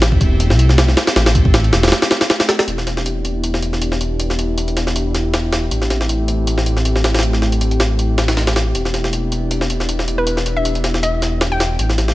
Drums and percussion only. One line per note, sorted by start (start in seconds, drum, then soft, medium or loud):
0.02 snare loud
0.02 closed hi-hat medium
0.12 kick loud
0.21 kick loud
0.21 closed hi-hat medium
0.40 closed hi-hat medium
0.50 snare medium
0.59 closed hi-hat medium
0.69 snare soft
0.78 snare loud
0.78 closed hi-hat medium
0.88 snare medium
0.97 snare loud
0.97 closed hi-hat medium
1.07 snare loud
1.07 closed hi-hat medium
1.16 snare loud
1.16 closed hi-hat medium
1.26 snare loud
1.26 closed hi-hat medium
1.35 kick loud
1.35 closed hi-hat medium
1.45 kick loud
1.54 snare loud
1.54 closed hi-hat medium
1.64 closed hi-hat soft
1.73 snare loud
1.73 closed hi-hat medium
1.83 snare medium
1.83 closed hi-hat medium
1.88 snare medium
1.88 closed hi-hat medium
1.92 snare loud
1.92 closed hi-hat medium
2.02 snare loud
2.02 closed hi-hat medium
2.11 snare loud
2.11 closed hi-hat medium
2.21 snare loud
2.21 closed hi-hat medium
2.30 snare loud
2.30 closed hi-hat medium
2.40 snare loud
2.40 closed hi-hat medium
2.49 snare loud
2.49 closed hi-hat medium
2.59 snare loud
2.59 closed hi-hat medium
2.68 closed hi-hat medium
2.78 snare soft
2.87 snare soft
2.87 closed hi-hat medium
2.97 snare soft
3.06 closed hi-hat medium
3.25 closed hi-hat medium
3.44 closed hi-hat medium
3.54 snare medium
3.62 closed hi-hat medium
3.73 snare soft
3.82 closed hi-hat medium
3.92 snare soft
4.01 closed hi-hat medium
4.20 closed hi-hat medium
4.30 snare soft
4.39 closed hi-hat medium
4.58 closed hi-hat medium
4.68 closed hi-hat soft
4.77 snare soft
4.77 closed hi-hat medium
4.87 snare soft
4.96 closed hi-hat medium
5.15 snare soft
5.15 closed hi-hat medium
5.34 snare loud
5.34 closed hi-hat medium
5.53 snare loud
5.53 closed hi-hat medium
5.71 closed hi-hat medium
5.82 snare soft
5.90 snare soft
5.90 closed hi-hat medium
6.01 snare soft
6.09 closed hi-hat medium
6.28 closed hi-hat medium
6.47 closed hi-hat medium
6.58 snare medium
6.66 closed hi-hat medium
6.77 snare soft
6.85 closed hi-hat medium
6.96 snare soft
7.04 snare medium
7.04 closed hi-hat medium
7.14 snare medium
7.14 closed hi-hat medium
7.19 snare medium
7.19 closed hi-hat medium
7.23 closed hi-hat medium
7.33 snare soft
7.42 snare soft
7.52 closed hi-hat medium
7.61 closed hi-hat medium
7.71 closed hi-hat soft
7.80 snare loud
7.80 closed hi-hat medium
7.99 closed hi-hat medium
8.18 snare loud
8.18 closed hi-hat medium
8.28 snare loud
8.28 closed hi-hat medium
8.37 snare medium
8.37 closed hi-hat medium
8.47 snare loud
8.47 closed hi-hat medium
8.56 snare medium
8.56 closed hi-hat medium
8.75 closed hi-hat medium
8.85 snare soft
8.94 snare soft
8.94 closed hi-hat medium
9.04 snare soft
9.13 closed hi-hat medium
9.32 closed hi-hat medium
9.51 closed hi-hat medium
9.61 snare medium
9.70 closed hi-hat medium
9.80 snare soft
9.89 closed hi-hat medium
9.99 snare soft
10.08 closed hi-hat medium
10.27 closed hi-hat medium
10.37 snare soft
10.46 closed hi-hat medium
10.65 closed hi-hat medium
10.75 closed hi-hat soft
10.84 snare medium
10.84 closed hi-hat medium
10.94 snare soft
11.03 closed hi-hat medium
11.22 snare soft
11.22 closed hi-hat medium
11.41 snare loud
11.41 closed hi-hat medium
11.60 snare loud
11.60 closed hi-hat medium
11.79 closed hi-hat medium
11.89 snare soft
11.98 snare soft
11.98 closed hi-hat medium
12.08 snare soft